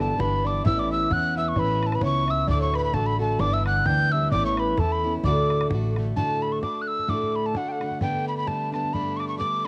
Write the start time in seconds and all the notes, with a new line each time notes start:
Already playing: G1 G2 D3 E3 G3 B3 D4
0.00 A4 A5
0.18 G1 E3 G3 B3 D4 B4 B5, bodhran
0.44 E3 G3 B3 D4 D5 D6
0.64 A1 A2 E3 B3 C#4 E4 E5 E6, bodhran
0.78 D5 D6
0.91 E5 E6
1.10 E2 E3 B3 C#4 E4 F#5 F#6, bodhran
1.36 B3 C#4 E4 E5 E6
1.49 C#6
1.55 A1 A2 E3 B3 C#4 E4 B4, bodhran
1.59 B5
1.83 A5, bodhran
1.92 B4 B5, bodhran
2.01 C#2 E3 B3 C#4 E4 C#5, bodhran
2.05 C#6
2.27 B3 C#4 E4 E5 E6, bodhran
2.47 D2 A2 D3 A3 D4 F#4 D5 D6, bodhran
2.60 C#5 C#6
2.73 B4 B5, bodhran
2.84 B5
2.93 A1 D3 A3 D4 F#4 A4 A5, bodhran
3.06 B5
3.19 D3 A3 D4 F#4 A4 A5
3.39 G1 G2 D3 E3 G3 B3 D4 D5 D6, bodhran
3.53 E5 E6
3.65 F#5 F#6, bodhran
3.85 D2 E3 G3 B3 D4 G5 G6, bodhran
4.12 E3 G3 B3 D4 E5 E6
4.31 A1 A2 E3 B3 C#4 E4 D5 D6, bodhran
4.44 C#5 C#6
4.57 B4 B5, bodhran
4.78 E2 E3 B3 C#4 E4 A4 A5, bodhran
4.92 B5
5.04 B3 C#4 E4
5.24 D2 A2 D3 A3 D4 F#4 D5 D6, bodhran
5.50 bodhran
5.61 bodhran
5.70 A1 D3 A3 D4, bodhran
5.75 F#4
5.96 D3 A3 D4 F#4, bodhran
6.16 D2 A2 D3 A3 D4 F#4 A5, bodhran
6.30 bodhran
6.42 B5
6.52 C#6
6.61 D3 A3 D4 F#4 D6, bodhran
6.82 F#6
6.88 E6
6.99 bodhran
7.07 D2 A2 D3 A3 D4 F#4 D6, bodhran
7.23 bodhran
7.36 B5
7.46 A5
7.54 D3 A3 D4 F#4 F#5, bodhran
7.69 F#5 G5
7.80 D3 A3 D4 F#4, bodhran
7.86 F#5
7.91 bodhran
8.00 G2 D3 G3 A3 B3 D4 G5, bodhran
8.14 bodhran
8.28 B5
8.37 B5
8.46 G3 A3 B3 D4 A5, bodhran
8.72 G3 A3 B3 D4 A5, bodhran
8.84 bodhran
8.93 G2 D3 G3 A3 B3 D4 B5, bodhran
9.16 C#6 D6, bodhran
9.28 C#6
9.38 G3 A3 B3 D4 D6, bodhran